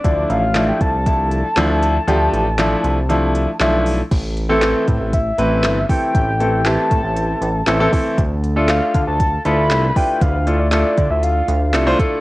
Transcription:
<<
  \new Staff \with { instrumentName = "Soft synth lead" } { \time 4/4 \key a \minor \tempo 4 = 118 d''8 f''8. g''16 a''2~ a''8~ | a''2. r4 | r2 e''4. g''8~ | g''4 a''2~ a''8 r8 |
r4 f''8. a''8. b''4 g''8 | f''8. d''16 d''8. e''16 f''4 r4 | }
  \new Staff \with { instrumentName = "Grand piano" } { \time 4/4 \key a \minor <f a d' e'>8. r16 <f a d' e'>8. r16 <f a d' e'>8. r16 <f a d' e'>8. r16 | <f a d' g'>8. r16 <f a d' e'>8. r16 <f a d' e'>8. r16 <f a d' e'>8. r16 | r8. <e a c' e' a'>4~ <e a c' e' a'>16 r8 <e a c' e' b'>8. r16 <e a c' e' a'>8~ | <e a c' e' a'>16 r16 <e a c' e' a'>16 r16 <e a c' e' g'>4. r8 <e a c' e' a'>16 <e a c' e' a'>16 <e a c' e' a'>8 |
r8. <a d' f' a'>4~ <a d' f' a'>16 r8 <a d' e' f' a'>8. r16 <a d' e' f' b'>8~ | <a d' e' f' b'>16 r16 <a d' e' f' a'>16 r16 <a d' e' f' a'>4. r8 <a d' e' f' a'>16 <a d' e' f' c''>16 <a d' e' f' a'>8 | }
  \new Staff \with { instrumentName = "Analog synth bass" } { \clef bass \time 4/4 \key a \minor d,8 a,,4 c,4. d,4 | d,8 a,,4 c,4. b,,4 | a,,4. a,16 a,,8. a,,8 g,,8 r8 | a,,4. a,16 a,,8. a,,8 a,,8 r8 |
d,4. d16 d,8. d,8 c,8 r8 | d,4. d16 d,8. d,8 c,8 r8 | }
  \new DrumStaff \with { instrumentName = "Drums" } \drummode { \time 4/4 <hh bd>8 hh8 <hc hh sn>8 <hh bd>8 <hh bd>8 hh8 <hc hh sn>8 hh8 | hh8 hh8 <hc hh sn>8 hh8 hh8 hh8 <hc hh sn>8 hho8 | <cymc hh bd>8 hh8 <hc hh sn>8 <hh bd>8 <hh bd>8 hh8 <hc hh sn>8 <hho bd>8 | <hh bd>8 hh8 <hc hh sn>8 <hh bd>8 hh8 hh8 <hc hh sn>8 <hho bd>8 |
<hh bd>8 hh8 <hc hh sn>8 <hh bd>8 <hh bd>8 hh8 <hc hh sn>8 <hho bd>8 | <hh bd>8 hh8 <hc hh sn>8 <hh bd>8 hh8 hh8 <hc hh sn>8 <hh bd>8 | }
>>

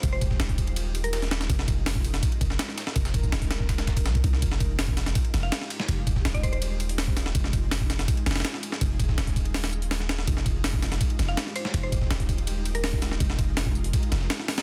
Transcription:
<<
  \new Staff \with { instrumentName = "Synth pluck" } { \time 4/4 \key f \minor \tempo 4 = 164 c''16 c''8 r2 bes'16 bes'16 r8. | r1 | r1 | r2 r8. f''8 r8. |
r4 r16 ees''16 c''16 c''16 r2 | r1 | r1 | r2 r8. f''8 r16 c''8~ |
c''16 c''8 r2 bes'16 bes'16 r8. | r1 | }
  \new Staff \with { instrumentName = "Ambient pad" } { \time 4/4 \key f \minor << { g'1 | bes'1~ | bes'1 | g'1~ |
g'1 | aes'1~ | aes'1 | g'1~ |
g'1 | bes'1 | } \\ { <aes ees' f'>1~ | <aes ees' f'>1~ | <aes ees' f'>1 | <aes ees' f'>1~ |
<aes ees' f'>1~ | <aes ees' f'>1~ | <aes ees' f'>1~ | <aes ees' f'>1~ |
<aes ees' f'>1~ | <aes ees' f'>1 | } >> }
  \new Staff \with { instrumentName = "808-style bass" } { \clef bass \time 4/4 \key f \minor f,,4 ees,,2. | f,,2 r8 f,,8 r4 | f,,4 ees,,2 c,8 c,8 | f,,2 r8 f,,8 r4 |
f,,4 ees,,2. | f,,2 r8 f,,8 r4 | f,,4 ees,,2. | f,,2 r8 f,,8 r4 |
f,,4 ees,,2. | f,,2 r8 f,,8 r4 | }
  \new DrumStaff \with { instrumentName = "Drums" } \drummode { \time 4/4 <bd cymr tamb>8 <bd cymr tamb>16 <bd sn>16 <cymr sn tamb>16 <hh bd>16 <bd cymr tamb>16 cymr16 <cymr tamb>8 <cymr tamb>16 <hh cymr>16 <cymr sn tamb>16 <hh sn>16 <cymr sn tamb>16 <sn tamb>16 | <bd cymr tamb>16 sn16 <bd cymr tamb>8 <hho sn tamb>16 bd16 <cymr tamb>16 <hh sn>16 <bd cymr tamb>16 cymr16 <bd cymr tamb>16 sn16 <cymr sn tamb>16 sn16 <cymr sn tamb>16 sn16 | <bd cymr tamb>16 <sn tamb>16 <bd cymr>16 <bd tamb>16 <cymr sn tamb>16 <hh bd>16 <cymr sn tamb>16 bd16 <bd cymr sn tamb>16 <sn tamb>16 <bd cymr sn tamb>16 <hh bd cymr>16 <sn tamb>16 <bd cymr>16 <bd cymr>16 sn16 | <bd cymr tamb>16 sn16 <bd cymr tamb>8 <hho sn tamb>16 bd16 <cymr sn tamb>16 <hh sn>16 <bd cymr tamb>16 cymr16 <cymr sn tamb>16 sn16 <cymr sn tamb>16 sn16 <cymr tamb>16 sn16 |
<bd cymr tamb>8 <bd cymr tamb>16 <bd sn>16 <cymr sn tamb>16 <hh bd>16 <bd cymr tamb>16 cymr16 <cymr tamb>8 <cymr tamb>16 <hh cymr>16 <hho sn tamb>16 bd16 <cymr sn tamb>16 sn16 | <bd cymr tamb>16 sn16 <bd cymr tamb>8 <hho sn tamb>16 bd16 <cymr sn tamb>16 <hh sn>16 <bd cymr tamb>16 cymr16 <hho sn tamb>32 <hho sn>32 <hho sn>32 <hho sn>32 <cymr sn tamb>16 sn16 <cymr tamb>16 sn16 | <bd cymr tamb>8 <bd cymr tamb>16 <bd sn>16 <cymr sn tamb>16 <hh bd>16 <bd cymr tamb>16 cymr16 <hho sn tamb>16 <hho sn>16 tamb16 hh16 <hho sn tamb>16 sn16 <cymr sn tamb>16 sn16 | <bd cymr tamb>16 sn16 <bd cymr tamb>8 <hho sn tamb>16 bd16 <cymr sn tamb>16 <hh sn>16 <bd cymr tamb>16 cymr16 <cymr sn tamb>16 sn16 <cymr sn tamb>16 sn16 <cymr tamb>16 sn16 |
<bd cymr tamb>8 <bd cymr tamb>16 <bd sn>16 <cymr sn tamb>16 <hh bd>16 <bd cymr tamb>16 cymr16 <cymr tamb>8 <cymr tamb>16 <hh cymr>16 <hho sn tamb>16 bd16 <cymr sn tamb>16 sn16 | <bd cymr tamb>16 sn16 <bd cymr tamb>8 <hho sn tamb>16 bd16 tamb16 hh16 <bd cymr tamb>16 cymr16 <cymr sn tamb>16 sn16 <cymr sn tamb>16 sn16 <hho sn tamb>16 <hho sn>16 | }
>>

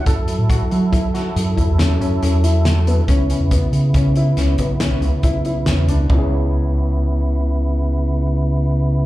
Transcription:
<<
  \new Staff \with { instrumentName = "Grand piano" } { \time 7/4 \key cis \minor \tempo 4 = 139 a'4 fis'8 fis'8 e'8 fis'4 e'8 cis'8 cis'8 cis'8 e'4 b8 | cis'8 cis'8 b4 cis'8 e'8 cis'8 b8 cis'4 e'8 e'8 cis'8 d'8 | <cis' e' gis' cis''>1.~ <cis' e' gis' cis''>4 | }
  \new Staff \with { instrumentName = "Tonewheel organ" } { \time 7/4 \key cis \minor <fis e' a'>1.~ <fis e' a'>4 | <cis b e'>1.~ <cis b e'>4 | <cis b e'>1.~ <cis b e'>4 | }
  \new Staff \with { instrumentName = "Fingered electric bass" } { \clef bass \time 7/4 \key cis \minor fis,8 r16 a,8 r16 fis4. fis,8 e,8. e,16 fis,16 r16 e,2 | cis,8 r16 e,8 r16 cis4. cis,8 b,,8. b,,16 cis,16 r16 b,,4 e,8 cis,8 | cis,1.~ cis,4 | }
  \new DrumStaff \with { instrumentName = "Drums" } \drummode { \time 7/4 <hh bd>8 hh8 <hh bd>8 hh8 <hh bd>8 <hh sn>8 hh8 <hh bd>8 <hh sn>8 hh8 hh8 hh8 <hh sn>8 hh8 | <hh bd>8 hh8 <hh bd>8 hh8 <hh bd>8 hh8 <hh sn>8 <hh bd>8 <hh sn>8 hh8 <hh bd>8 hh8 <hh sn>8 hh8 | <bd tomfh>4 r4 r4 r4 r4 r4 r4 | }
>>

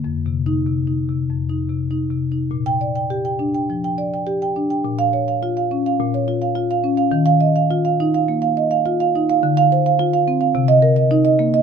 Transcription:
\new Staff \with { instrumentName = "Marimba" } { \time 4/4 \key bes \major \tempo 4 = 105 << { \tuplet 3/2 { r4 ees'8~ } ees'16 r2 r8. | r16 g''8 r2. r16 | r16 f''8 r2. r16 | r16 f''8 r2. r16 |
r16 f''8 r4. ees''8 r4 r16 | } \\ { \tuplet 3/2 { f,8 c4 c8 ees'8 c8 f,8 ees'8 c8 ees'8 c8 ees'8 } | bes,8 d''16 g''16 g'16 g''16 d'16 g''16 f16 g''16 d''16 g''16 g'16 g''16 d'16 g''16 | bes,8 des''16 f''16 f'16 f''16 des'16 f''16 bes,16 des''16 f'16 f''16 f'16 f''16 des'16 f''16 | ees8 ees''16 f''16 f'16 f''16 ees'16 f''16 bes16 f''16 ees''16 f''16 f'16 f''16 ees'16 f''16 |
d8 c''16 f''16 f'16 f''16 c'16 f''16 c8 bes'16 ees''16 ees'16 ees''16 bes16 ees''16 | } >> }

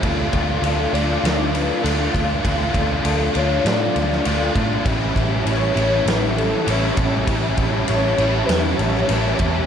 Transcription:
<<
  \new Staff \with { instrumentName = "Soft synth lead" } { \time 4/4 \key a \mixolydian \tempo 4 = 99 r4 a'8 d''8 d''8 b'8 a'8. r16 | r4 a'8 cis''8 d''4. r8 | r4 cis''4 b'8 a'8 cis''8. r16 | r4 cis''4 b'8 cis''4 r8 | }
  \new Staff \with { instrumentName = "Analog synth pad" } { \time 4/4 \key a \mixolydian r1 | r1 | <cis' g' e'' a''>1~ | <cis' g' e'' a''>1 | }
  \new Staff \with { instrumentName = "Overdriven electric guitar" } { \time 4/4 \key a \mixolydian <d a d' f'>8 <a d' f'>8 <d a d' f'>8 <a d' f'>4. <d a d' f'>8 <a d' f'>8 | <d a d' f'>8 <a d' f'>8 <d a d' f'>8 <a d' f'>4. <d a d' f'>8 <a d' f'>8 | <a, e g cis' e'>8 <g cis' e'>8 <e g cis' e'>8 <g cis' e'>4. <e g cis' e'>8 <g cis' e'>8 | <a, e g cis' e'>8 <g cis' e'>8 <e g cis' e'>8 <g cis' e'>4. <e g cis' e'>8 <g cis' e'>8 | }
  \new Staff \with { instrumentName = "Overdriven electric guitar" } { \time 4/4 \key a \mixolydian <d a d' f'>4. <d a d' f'>4. <d a d' f'>4 | <d a d' f'>4. <d a d' f'>4. <d a d' f'>4 | <a, e g cis' e'>4. <a, e g cis' e'>4. <a, e g cis' e'>4 | <a, e g cis' e'>4. <a, e g cis' e'>4. <a, e g cis' e'>4 | }
  \new Staff \with { instrumentName = "Picked electric bass" } { \clef bass \time 4/4 \key a \mixolydian d,8 d,8 d,8 d,8 d,4 d,8 d,8 | d,8 d,8 d,8 d,8 a,8 d,8 d,8 a,8 | a,,8 a,,8 a,,8 a,,8 a,,4 a,,8 a,,8 | a,,8 a,,8 a,,8 a,,8 e,8 a,,8 a,,8 e,8 | }
  \new DrumStaff \with { instrumentName = "Drums" } \drummode { \time 4/4 <bd cymr>8 <bd cymr>8 cymr8 cymr8 <cymr sn>8 cymr8 cymr8 <bd cymr>8 | <bd cymr>8 <bd cymr>8 cymr8 cymr8 <cymr sn>8 cymr16 sn16 cymr8 <bd cymr>8 | <bd cymr>8 <bd cymr>8 cymr8 cymr8 <cymr sn>8 cymr8 cymr8 <bd cymr>8 | <bd cymr>8 <bd cymr>8 cymr8 cymr8 <cymr sn>8 cymr16 sn16 cymr8 <bd cymr>8 | }
>>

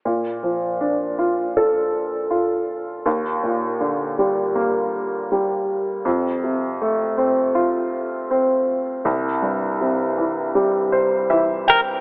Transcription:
<<
  \new Staff \with { instrumentName = "Clean electric guitar" } { \time 4/4 \key bes \lydian \tempo 4 = 80 r1 | r1 | r1 | r2. r8 bes'8 | }
  \new Staff \with { instrumentName = "Upright piano" } { \time 4/4 \key bes \lydian r1 | r1 | r1 | r2 r8 c''8 e''8 g''8 | }
  \new Staff \with { instrumentName = "Upright piano" } { \clef bass \time 4/4 \key bes \lydian bes,8 f8 d'8 f'8 a'4 f'4 | ees,8 bes,8 d8 g8 bes4 g4 | f,8 c8 a8 c'8 f'4 c'4 | c,8 g,8 c8 e8 g4 e4 | }
>>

